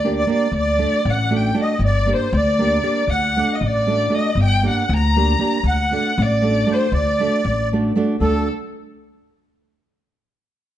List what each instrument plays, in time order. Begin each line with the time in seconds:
Already playing: upright bass D2, violin D5, accordion D5
0.04 nylon-string guitar A#3 D4 G4 A#4 D5
0.16 violin D5, accordion D5
0.27 nylon-string guitar A#3 D4 G4 A#4 D5, violin D5
0.35 accordion D5
0.52 upright bass D2, violin D5
0.60 accordion D5
0.78 nylon-string guitar A3 D4 F#4 A4 D5
1.05 upright bass A1
1.09 accordion F#5, violin F#5
1.30 nylon-string guitar A3 D4 F#4 A4 D5
1.36 accordion G5, violin G5
1.54 nylon-string guitar A3 D4 F#4 A4 D5
1.61 violin D#5, accordion D#5
1.79 upright bass G1, violin D5
1.85 accordion D5
2.06 nylon-string guitar A#3 D4 G4 A#4 D5
2.13 violin C5, accordion C5
2.33 upright bass D2, violin D5, accordion D5
2.59 nylon-string guitar A#3 D4 G4 A#4 D5
2.83 nylon-string guitar A#3 D4 G4 A#4 D5
3.07 upright bass D2, violin F#5, accordion F#5
3.37 nylon-string guitar A3 D4 F#4 A4 D5
3.52 accordion D#5, violin D#5
3.61 upright bass A1, accordion D5
3.66 violin D5
3.87 nylon-string guitar A3 D4 F#4 A4 D5
4.09 nylon-string guitar A3 D4 F#4 A4 D5
4.15 violin D#5, accordion D#5
4.35 upright bass G1
4.41 violin G5, accordion G5
4.62 nylon-string guitar A#3 D4 G4 A#4 D5
4.68 violin F#5, accordion F#5
4.89 upright bass D2
4.93 violin A#5, accordion A#5
5.16 nylon-string guitar A#3 D4 G4 A#4 D5
5.39 nylon-string guitar A#3 D4 G4 A#4 D5
5.63 upright bass D2
5.68 violin F#5, accordion F#5
5.91 nylon-string guitar A3 D4 F#4 A4 D5
6.18 upright bass A1, accordion D5, violin D5
6.42 nylon-string guitar A3 D4 F#4 A4 D5
6.66 nylon-string guitar A3 D4 F#4 A4 D5
6.71 accordion C5, violin C5
6.92 upright bass D2, accordion D5
6.96 violin D5
7.20 nylon-string guitar A3 D4 F#4 A4 D5
7.45 upright bass A1
7.73 nylon-string guitar A3 D4 F#4 A4 D5
7.95 nylon-string guitar A3 D4 F#4 A4 D5
8.20 upright bass D2, nylon-string guitar A3 D4 F#4 A4, accordion A4, violin A4